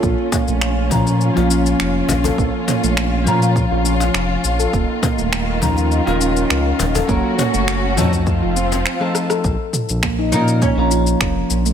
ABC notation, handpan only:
X:1
M:4/4
L:1/16
Q:1/4=102
K:Bbm
V:1 name="Handpan"
B,2 B, =A, z2 F,3 F D z4 =A | B,2 B, =A, z2 F,3 F D z4 =A | B,2 B, =A, z2 F,3 F D z4 =A | B,2 B, =A, z2 F,2 z F C z4 =A |
z4 B, E3 B, B, F z B,3 =A, |]